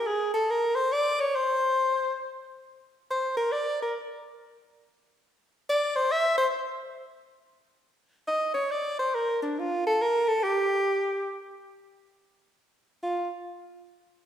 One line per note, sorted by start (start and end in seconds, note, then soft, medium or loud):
0.07 0.34 G#4 medium
0.34 0.52 A4 medium
0.51 0.77 A#4 medium
0.75 0.94 C5 medium
0.93 1.22 D5 loud
1.20 1.37 C#5 medium
1.36 2.21 C5 medium
3.11 3.35 C5 medium
3.37 3.54 A#4 medium
3.52 3.79 D5 medium
3.82 3.94 A#4 medium
5.70 5.97 D5 medium
5.96 6.13 C5 medium
6.12 6.37 E5 medium
6.38 6.46 C5 medium
8.28 8.53 D#5 medium
8.54 8.73 C#5 medium
8.71 8.98 D5 medium
8.99 9.16 C5 medium
9.15 9.42 A#4 medium
9.43 9.61 D4 medium
9.59 9.85 F4 medium
9.87 10.03 A4 medium
10.02 10.30 A#4 medium
10.28 10.45 A4 medium
10.43 11.29 G4 medium
13.03 13.29 F4 medium